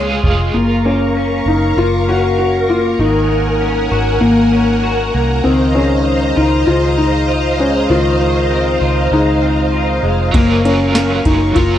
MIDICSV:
0, 0, Header, 1, 7, 480
1, 0, Start_track
1, 0, Key_signature, -5, "major"
1, 0, Tempo, 612245
1, 425, Time_signature, 4, 2, 24, 8
1, 9239, End_track
2, 0, Start_track
2, 0, Title_t, "String machine"
2, 0, Program_c, 0, 50
2, 0, Note_on_c, 0, 68, 71
2, 0, Note_on_c, 0, 77, 69
2, 0, Note_on_c, 0, 80, 87
2, 0, Note_on_c, 0, 84, 68
2, 392, Note_off_c, 0, 68, 0
2, 392, Note_off_c, 0, 80, 0
2, 400, Note_off_c, 0, 77, 0
2, 403, Note_off_c, 0, 84, 0
2, 418, Note_on_c, 0, 77, 72
2, 422, Note_on_c, 0, 82, 71
2, 423, Note_on_c, 0, 85, 82
2, 424, Note_on_c, 0, 70, 80
2, 2322, Note_off_c, 0, 77, 0
2, 2324, Note_off_c, 0, 82, 0
2, 2325, Note_off_c, 0, 85, 0
2, 2345, Note_on_c, 0, 82, 84
2, 2350, Note_on_c, 0, 80, 73
2, 2351, Note_on_c, 0, 78, 66
2, 4233, Note_off_c, 0, 70, 0
2, 4248, Note_off_c, 0, 80, 0
2, 4249, Note_off_c, 0, 78, 0
2, 4273, Note_on_c, 0, 72, 79
2, 4274, Note_on_c, 0, 75, 75
2, 4276, Note_on_c, 0, 77, 69
2, 8074, Note_off_c, 0, 82, 0
2, 8078, Note_off_c, 0, 72, 0
2, 8078, Note_off_c, 0, 75, 0
2, 8111, Note_on_c, 0, 70, 78
2, 8111, Note_on_c, 0, 85, 88
2, 9239, Note_off_c, 0, 70, 0
2, 9239, Note_off_c, 0, 77, 0
2, 9239, Note_off_c, 0, 85, 0
2, 9239, End_track
3, 0, Start_track
3, 0, Title_t, "Felt piano"
3, 0, Program_c, 1, 0
3, 0, Note_on_c, 1, 73, 78
3, 277, Note_off_c, 1, 73, 0
3, 423, Note_on_c, 1, 58, 83
3, 670, Note_on_c, 1, 61, 88
3, 671, Note_off_c, 1, 58, 0
3, 1158, Note_on_c, 1, 63, 86
3, 1162, Note_off_c, 1, 61, 0
3, 1394, Note_on_c, 1, 65, 106
3, 1399, Note_off_c, 1, 63, 0
3, 1636, Note_on_c, 1, 66, 101
3, 1637, Note_off_c, 1, 65, 0
3, 1857, Note_off_c, 1, 66, 0
3, 1868, Note_on_c, 1, 66, 93
3, 2114, Note_off_c, 1, 66, 0
3, 2114, Note_on_c, 1, 65, 95
3, 2333, Note_off_c, 1, 65, 0
3, 2352, Note_on_c, 1, 63, 85
3, 3037, Note_off_c, 1, 63, 0
3, 3298, Note_on_c, 1, 58, 106
3, 3990, Note_off_c, 1, 58, 0
3, 4262, Note_on_c, 1, 60, 92
3, 4507, Note_on_c, 1, 61, 91
3, 4511, Note_off_c, 1, 60, 0
3, 4993, Note_on_c, 1, 63, 97
3, 5000, Note_off_c, 1, 61, 0
3, 5227, Note_on_c, 1, 65, 103
3, 5236, Note_off_c, 1, 63, 0
3, 5470, Note_on_c, 1, 63, 100
3, 5474, Note_off_c, 1, 65, 0
3, 5957, Note_on_c, 1, 61, 89
3, 5962, Note_off_c, 1, 63, 0
3, 6196, Note_on_c, 1, 65, 94
3, 6198, Note_off_c, 1, 61, 0
3, 6879, Note_off_c, 1, 65, 0
3, 7159, Note_on_c, 1, 63, 100
3, 7841, Note_off_c, 1, 63, 0
3, 8110, Note_on_c, 1, 58, 85
3, 8350, Note_on_c, 1, 61, 89
3, 8355, Note_off_c, 1, 58, 0
3, 8824, Note_on_c, 1, 63, 91
3, 8842, Note_off_c, 1, 61, 0
3, 9056, Note_on_c, 1, 65, 102
3, 9072, Note_off_c, 1, 63, 0
3, 9239, Note_off_c, 1, 65, 0
3, 9239, End_track
4, 0, Start_track
4, 0, Title_t, "Overdriven electric guitar"
4, 0, Program_c, 2, 29
4, 0, Note_on_c, 2, 56, 53
4, 0, Note_on_c, 2, 65, 59
4, 0, Note_on_c, 2, 68, 62
4, 416, Note_off_c, 2, 56, 0
4, 435, Note_off_c, 2, 68, 0
4, 827, Note_off_c, 2, 65, 0
4, 8088, Note_on_c, 2, 54, 81
4, 8112, Note_on_c, 2, 61, 75
4, 8130, Note_on_c, 2, 65, 80
4, 8143, Note_on_c, 2, 70, 86
4, 9049, Note_off_c, 2, 54, 0
4, 9052, Note_on_c, 2, 54, 62
4, 9065, Note_off_c, 2, 61, 0
4, 9068, Note_on_c, 2, 61, 65
4, 9078, Note_off_c, 2, 65, 0
4, 9086, Note_off_c, 2, 70, 0
4, 9089, Note_on_c, 2, 70, 74
4, 9239, Note_off_c, 2, 54, 0
4, 9239, Note_off_c, 2, 61, 0
4, 9239, Note_off_c, 2, 70, 0
4, 9239, End_track
5, 0, Start_track
5, 0, Title_t, "Clean electric guitar"
5, 0, Program_c, 3, 27
5, 0, Note_on_c, 3, 56, 59
5, 0, Note_on_c, 3, 65, 64
5, 185, Note_off_c, 3, 65, 0
5, 188, Note_on_c, 3, 65, 58
5, 475, Note_off_c, 3, 56, 0
5, 667, Note_on_c, 3, 58, 56
5, 915, Note_on_c, 3, 61, 59
5, 1390, Note_off_c, 3, 58, 0
5, 1393, Note_on_c, 3, 58, 58
5, 1627, Note_off_c, 3, 61, 0
5, 1630, Note_on_c, 3, 61, 60
5, 2103, Note_off_c, 3, 58, 0
5, 2106, Note_on_c, 3, 58, 61
5, 2345, Note_on_c, 3, 51, 81
5, 2369, Note_off_c, 3, 65, 0
5, 2590, Note_off_c, 3, 58, 0
5, 2593, Note_on_c, 3, 58, 55
5, 2825, Note_off_c, 3, 61, 0
5, 2828, Note_on_c, 3, 61, 61
5, 3067, Note_on_c, 3, 66, 67
5, 3304, Note_off_c, 3, 58, 0
5, 3313, Note_on_c, 3, 58, 62
5, 3545, Note_off_c, 3, 61, 0
5, 3548, Note_on_c, 3, 61, 62
5, 3780, Note_off_c, 3, 66, 0
5, 3790, Note_on_c, 3, 66, 66
5, 4022, Note_off_c, 3, 58, 0
5, 4031, Note_on_c, 3, 58, 59
5, 4265, Note_off_c, 3, 51, 0
5, 4268, Note_on_c, 3, 51, 83
5, 4316, Note_off_c, 3, 58, 0
5, 4316, Note_off_c, 3, 66, 0
5, 4512, Note_on_c, 3, 56, 56
5, 4986, Note_on_c, 3, 65, 68
5, 5221, Note_off_c, 3, 56, 0
5, 5230, Note_on_c, 3, 56, 61
5, 5707, Note_off_c, 3, 65, 0
5, 5710, Note_on_c, 3, 65, 67
5, 5938, Note_off_c, 3, 56, 0
5, 5948, Note_on_c, 3, 56, 55
5, 6178, Note_off_c, 3, 51, 0
5, 6187, Note_on_c, 3, 51, 78
5, 6211, Note_off_c, 3, 61, 0
5, 6419, Note_off_c, 3, 56, 0
5, 6428, Note_on_c, 3, 56, 54
5, 6670, Note_on_c, 3, 60, 55
5, 6907, Note_off_c, 3, 65, 0
5, 6910, Note_on_c, 3, 65, 68
5, 7139, Note_off_c, 3, 56, 0
5, 7148, Note_on_c, 3, 56, 58
5, 7377, Note_off_c, 3, 60, 0
5, 7386, Note_on_c, 3, 60, 60
5, 7619, Note_off_c, 3, 65, 0
5, 7622, Note_on_c, 3, 65, 64
5, 7858, Note_off_c, 3, 56, 0
5, 7867, Note_on_c, 3, 56, 60
5, 8106, Note_off_c, 3, 51, 0
5, 8106, Note_off_c, 3, 56, 0
5, 8109, Note_on_c, 3, 58, 80
5, 8154, Note_off_c, 3, 60, 0
5, 8347, Note_off_c, 3, 58, 0
5, 8350, Note_on_c, 3, 58, 55
5, 8584, Note_on_c, 3, 61, 57
5, 9064, Note_off_c, 3, 58, 0
5, 9067, Note_on_c, 3, 58, 60
5, 9239, Note_off_c, 3, 58, 0
5, 9239, Note_off_c, 3, 61, 0
5, 9239, Note_off_c, 3, 65, 0
5, 9239, End_track
6, 0, Start_track
6, 0, Title_t, "Fingered electric bass"
6, 0, Program_c, 4, 33
6, 0, Note_on_c, 4, 37, 92
6, 153, Note_off_c, 4, 37, 0
6, 185, Note_on_c, 4, 29, 81
6, 413, Note_off_c, 4, 29, 0
6, 427, Note_on_c, 4, 30, 94
6, 1115, Note_off_c, 4, 30, 0
6, 1143, Note_on_c, 4, 30, 91
6, 1372, Note_off_c, 4, 30, 0
6, 1385, Note_on_c, 4, 30, 92
6, 2314, Note_off_c, 4, 30, 0
6, 2345, Note_on_c, 4, 32, 96
6, 3034, Note_off_c, 4, 32, 0
6, 3069, Note_on_c, 4, 32, 94
6, 3295, Note_off_c, 4, 32, 0
6, 3308, Note_on_c, 4, 32, 105
6, 3995, Note_off_c, 4, 32, 0
6, 4033, Note_on_c, 4, 36, 91
6, 4257, Note_off_c, 4, 36, 0
6, 4273, Note_on_c, 4, 37, 92
6, 4958, Note_off_c, 4, 37, 0
6, 4995, Note_on_c, 4, 37, 92
6, 5218, Note_off_c, 4, 37, 0
6, 5235, Note_on_c, 4, 37, 96
6, 6159, Note_off_c, 4, 37, 0
6, 6195, Note_on_c, 4, 37, 107
6, 6879, Note_off_c, 4, 37, 0
6, 6909, Note_on_c, 4, 37, 94
6, 7135, Note_off_c, 4, 37, 0
6, 7146, Note_on_c, 4, 37, 106
6, 7834, Note_off_c, 4, 37, 0
6, 7863, Note_on_c, 4, 29, 77
6, 8092, Note_off_c, 4, 29, 0
6, 8109, Note_on_c, 4, 30, 99
6, 8796, Note_off_c, 4, 30, 0
6, 8825, Note_on_c, 4, 30, 93
6, 9053, Note_off_c, 4, 30, 0
6, 9064, Note_on_c, 4, 30, 105
6, 9239, Note_off_c, 4, 30, 0
6, 9239, End_track
7, 0, Start_track
7, 0, Title_t, "Drums"
7, 184, Note_on_c, 9, 36, 83
7, 263, Note_off_c, 9, 36, 0
7, 8106, Note_on_c, 9, 36, 120
7, 8108, Note_on_c, 9, 51, 60
7, 8185, Note_off_c, 9, 36, 0
7, 8186, Note_off_c, 9, 51, 0
7, 8352, Note_on_c, 9, 51, 45
7, 8431, Note_off_c, 9, 51, 0
7, 8584, Note_on_c, 9, 54, 59
7, 8585, Note_on_c, 9, 38, 104
7, 8586, Note_on_c, 9, 51, 59
7, 8662, Note_off_c, 9, 54, 0
7, 8664, Note_off_c, 9, 38, 0
7, 8664, Note_off_c, 9, 51, 0
7, 8822, Note_on_c, 9, 51, 49
7, 8824, Note_on_c, 9, 36, 82
7, 8901, Note_off_c, 9, 51, 0
7, 8902, Note_off_c, 9, 36, 0
7, 9061, Note_on_c, 9, 51, 54
7, 9062, Note_on_c, 9, 36, 81
7, 9140, Note_off_c, 9, 51, 0
7, 9141, Note_off_c, 9, 36, 0
7, 9239, End_track
0, 0, End_of_file